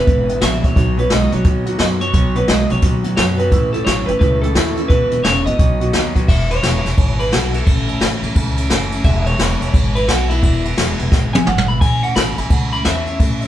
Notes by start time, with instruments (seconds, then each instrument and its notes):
Already playing: clean electric guitar B4
0.06 upright bass G#1, clean electric guitar E2 B2, steel-string acoustic guitar E3 G#3 B3 E4, kick, closed hi-hat
0.28 clean electric guitar E2 B2, steel-string acoustic guitar E3 G#3 B3 E4, closed hi-hat
0.41 upright bass A#1, clean electric guitar E2 B2 E5, steel-string acoustic guitar E2 B2 E3 G#3 B3 E4, snare, closed hi-hat
0.63 clean electric guitar E2 B2 C#5, steel-string acoustic guitar E3 G#3 B3 E4, kick, closed hi-hat
0.76 upright bass B1, clean electric guitar B2 F#3, steel-string acoustic guitar B2 F#3 B3 D#4 F#4, kick, closed hi-hat
0.97 clean electric guitar B2 F#3 B4, steel-string acoustic guitar B3 D#4 F#4, closed hi-hat
1.10 upright bass B1, clean electric guitar B2 G#3 D#5, steel-string acoustic guitar B2 F#3 B3 D#4 F#4, snare, closed hi-hat
1.32 upright bass B1, clean electric guitar B2 F#3 C#5, steel-string acoustic guitar B3 D#4 F#4, closed hi-hat
1.44 upright bass D#2, clean electric guitar B2 F#3, steel-string acoustic guitar F#3 B3 D#4 F#4, kick, closed hi-hat
1.66 clean electric guitar B2 F#3, steel-string acoustic guitar B3 D#4 F#4, closed hi-hat
1.79 upright bass F#2, steel-string acoustic guitar B2 F#3 B3 D#4 F#4, clean electric guitar B2 F#3 D#5, snare, closed hi-hat
2.00 clean electric guitar B2 F#3 C#5, steel-string acoustic guitar B3 D#4 F#4, closed hi-hat
2.13 upright bass B1, steel-string acoustic guitar B2 F#3 B3 D#4 F#4, clean electric guitar B2 F#3, kick, closed hi-hat
2.35 clean electric guitar B2 F#3 B4, steel-string acoustic guitar B3 D#4 F#4, closed hi-hat
2.48 upright bass B1, steel-string acoustic guitar B2 F#3 B3 D#4 F#4, clean electric guitar B2 G#3 D#5, snare, closed hi-hat
2.69 upright bass B1, clean electric guitar B2 F#3 C#5, steel-string acoustic guitar B3 D#4 F#4, closed hi-hat
2.82 upright bass D#2, clean electric guitar B2 F#3, steel-string acoustic guitar F#3 B3 D#4 F#4, kick, closed hi-hat
3.04 clean electric guitar B2 F#3, steel-string acoustic guitar B3 D#4 F#4, closed hi-hat
3.17 upright bass F#2, clean electric guitar B2 F#3 C#5, steel-string acoustic guitar B2 F#3 B3 D#4 F#4, snare, closed hi-hat
3.38 clean electric guitar B2 F#3 B4, steel-string acoustic guitar B3 D#4 F#4, closed hi-hat
3.51 upright bass A1, steel-string acoustic guitar A2 E3 A3 C#4 E4, clean electric guitar A2 E3, kick, closed hi-hat
3.73 clean electric guitar A2 E3 A4, steel-string acoustic guitar A3 C#4 E4, closed hi-hat
3.85 upright bass A1, clean electric guitar A2 F#3 C#5, steel-string acoustic guitar A2 E3 A3 C#4 E4, snare, closed hi-hat
4.06 upright bass A1, clean electric guitar A2 E3 B4, steel-string acoustic guitar C#4 E4, closed hi-hat
4.11 steel-string acoustic guitar A3
4.19 upright bass C#2, clean electric guitar A2 E3 B4, steel-string acoustic guitar E3 A3 C#4, kick, closed hi-hat
4.23 steel-string acoustic guitar E4
4.41 clean electric guitar A2 E3 A4, steel-string acoustic guitar A3 C#4 E4, closed hi-hat
4.54 upright bass D#2, steel-string acoustic guitar A2 E3 A3 C#4 E4, clean electric guitar A2 E3, snare, closed hi-hat
4.77 clean electric guitar A2 E3, steel-string acoustic guitar A3 C#4 E4, closed hi-hat
4.88 upright bass E1, clean electric guitar E2 B2 B4, steel-string acoustic guitar E2 B2 E3 G#3 B3 E4, kick, closed hi-hat
5.11 clean electric guitar E2 B2, steel-string acoustic guitar E3 G#3 B3 E4, closed hi-hat
5.24 upright bass E1, steel-string acoustic guitar E2 B2 E3 G#3 B3 E4, clean electric guitar E2 C#3 C#5, snare, closed hi-hat
5.45 upright bass A1, clean electric guitar E2 B2 D#5, steel-string acoustic guitar E3 G#3 B3 E4, closed hi-hat
5.58 upright bass B1, clean electric guitar B2 F#3, steel-string acoustic guitar F#3 B3 D#4 F#4, kick, closed hi-hat
5.80 clean electric guitar B2 F#3, steel-string acoustic guitar B3 D#4 F#4, closed hi-hat
5.93 upright bass D#2, clean electric guitar B2 F#3, steel-string acoustic guitar B2 F#3 B3 D#4 F#4, snare, closed hi-hat
6.15 clean electric guitar B2 F#3, steel-string acoustic guitar B3 D#4 F#4, kick, closed hi-hat
6.28 upright bass E1, steel-string acoustic guitar E2 B2 E3 G#3 B3 E4, clean electric guitar E5, kick, crash
6.50 steel-string acoustic guitar E3 G#3 B3 E4, clean electric guitar C#5, ride
6.62 upright bass E1, steel-string acoustic guitar E2 B2 E3 G#3 B3 E4, snare, ride
6.83 upright bass E1, steel-string acoustic guitar E3 G#3 B3 E4, snare, ride
6.97 upright bass G#1, steel-string acoustic guitar E3 G#3 B3 E4, kick, ride
7.19 steel-string acoustic guitar E3 G#3 B3 E4, clean electric guitar B4, ride
7.31 upright bass B1, steel-string acoustic guitar E2 B2 E3 G#3 B3 E4, clean electric guitar F#4, snare, ride
7.53 steel-string acoustic guitar E3 G#3 B3 E4, clean electric guitar A4, ride
7.66 upright bass A1, steel-string acoustic guitar A2 E3 A3 C#4 E4, kick, ride
7.87 steel-string acoustic guitar A3 C#4 E4, ride
8.00 upright bass A1, steel-string acoustic guitar A2 E3 A3 C#4 E4, snare, ride
8.21 upright bass A1, steel-string acoustic guitar A3 C#4 E4, ride
8.34 upright bass C#2, steel-string acoustic guitar E3 A3 C#4 E4, kick, ride
8.56 steel-string acoustic guitar A3 C#4 E4, ride
8.69 upright bass F#1, steel-string acoustic guitar A2 E3 A3 C#4 E4, snare, ride
8.91 steel-string acoustic guitar A3 C#4 E4, ride
9.03 upright bass E1, steel-string acoustic guitar E2 B2 E3 G#3 B3 E4, clean electric guitar E5, kick, ride
9.26 steel-string acoustic guitar E3 G#3 B3 E4, clean electric guitar C#5, ride
9.38 upright bass E1, steel-string acoustic guitar E2 B2 E3 G#3 B3 E4, snare, ride
9.60 upright bass E1, steel-string acoustic guitar E3 G#3 B3 E4, ride
9.73 upright bass G#1, steel-string acoustic guitar E3 G#3 B3 E4, kick, ride
9.95 steel-string acoustic guitar E3 G#3 B3 E4, clean electric guitar B4, ride
10.07 upright bass B1, steel-string acoustic guitar E2 B2 E3 G#3 B3 E4, clean electric guitar F#4, snare, ride
10.28 steel-string acoustic guitar E3 G#3 B3 E4, clean electric guitar E4, ride
10.41 upright bass E1, steel-string acoustic guitar E2 B2 E3 G#3 B3 E4, kick, ride
10.64 steel-string acoustic guitar E3 G#3 B3 E4, ride
10.77 upright bass E1, steel-string acoustic guitar E2 B2 E3 G#3 B3 E4, snare, ride
10.98 upright bass E1, steel-string acoustic guitar E3 G#3 B3 E4, ride
11.11 upright bass G#1, steel-string acoustic guitar E3 G#3 B3 E4, kick, snare
11.33 steel-string acoustic guitar E3 G#3 B3 E4, clean electric guitar G#5, high tom
11.46 upright bass G#1, steel-string acoustic guitar E2 B2 E3 G#3 B3 E4, clean electric guitar F#5, mid tom
11.58 mid tom
11.68 steel-string acoustic guitar E3 G#3 B3 E4, clean electric guitar B5
11.81 upright bass A1, steel-string acoustic guitar A2 E3 A3 C#4 E4, clean electric guitar G#5, kick, ride
12.02 steel-string acoustic guitar A3 C#4 E4, clean electric guitar F#5, ride
12.15 upright bass A1, steel-string acoustic guitar A2 E3 A3 C#4 E4, clean electric guitar B5, snare, ride
12.37 upright bass A1, steel-string acoustic guitar A3 C#4 E4, clean electric guitar G#5, ride
12.49 upright bass C#2, steel-string acoustic guitar E3 A3 C#4 E4, clean electric guitar F#5, kick, ride
12.72 steel-string acoustic guitar A3 C#4 E4, clean electric guitar B5, ride
12.85 upright bass E2, steel-string acoustic guitar A2 E3 A3 C#4 E4, clean electric guitar E5, snare, ride
13.07 steel-string acoustic guitar A3 C#4 E4, ride
13.20 upright bass A1, steel-string acoustic guitar A2 E3 A3 C#4 E4, kick, ride
13.41 steel-string acoustic guitar C#4 E4, ride